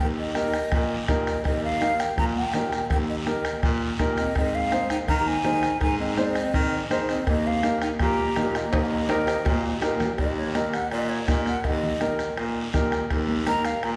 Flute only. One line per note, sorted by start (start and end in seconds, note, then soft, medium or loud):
0.19 0.35 D#5 medium
0.38 1.05 D#5 loud
1.29 1.45 D#5 medium
1.46 1.62 D#5 medium
1.64 2.02 F5 medium
2.00 2.18 G5 medium
2.19 2.25 A#5 loud
2.37 2.87 G5 medium
2.92 2.98 G5 medium
3.10 3.16 D#5 medium
3.28 3.70 D#5 medium
4.18 4.35 D#5 medium
4.37 4.56 D#5 loud
4.55 4.91 F5 loud
4.92 4.98 G5 medium
5.09 5.19 A#5 loud
5.19 5.29 A#5 medium
5.27 5.81 G#5 loud
5.82 5.99 G#5 loud
6.00 6.17 D#5 medium
6.18 6.87 D#5 loud
7.10 7.26 D#5 medium
7.28 7.48 D#5 medium
7.47 7.82 F5 loud
7.83 7.89 G5 medium
8.02 8.58 A#5 loud
8.56 10.01 D#5 medium
10.20 10.37 D#5 medium
10.37 10.54 C#5 medium
10.55 10.72 D#5 medium
10.72 10.91 F#5 medium
10.91 11.11 D#5 loud
11.09 11.30 C#5 medium
11.29 11.46 D#5 medium
11.47 11.67 F#5 medium
11.65 12.36 D#5 loud
13.47 13.67 A#5 loud
13.65 13.85 F5 medium
13.84 13.96 A#5 medium